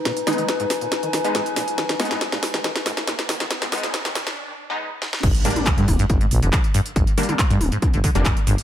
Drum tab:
CC |--------------------------------|--------------------------------|--------------------------------|x-------------------------------|
HH |x-x-oxx-x-x-o-x-x-x-o-x-x-x-o-x-|x-x-oxx-x-x-o-x-x-x-o-x-x-x-o-x-|x-x-oxx-x-x-o-x-----------------|x-x-oxx-x-x-o-x-x-x-o-x-x-x-o-x-|
CP |--------------------------------|--------------------------------|--------------------------------|--------x---------------x-------|
SD |o---o---o---o---o---o---o---o---|o-o-o-o-o-o-o-o-o-o-o-o-o-o-o-o-|o-o-o-o-o-o-o-o-------------o-o-|--------------------------------|
T2 |----o---------------------------|----o---------------------------|----o---------------------------|------o-----o---o---------------|
BD |--------------------------------|--------------------------------|--------------------------------|o-------o---o---o-------o-------|

CC |--------------------------------|
HH |x-x-oxx-x-x-o-x-x-x-o-x-x-x-o-x-|
CP |--------x---------------x-------|
SD |--------------------------------|
T2 |------o-----o---o---------------|
BD |o-------o-------o---o---o-------|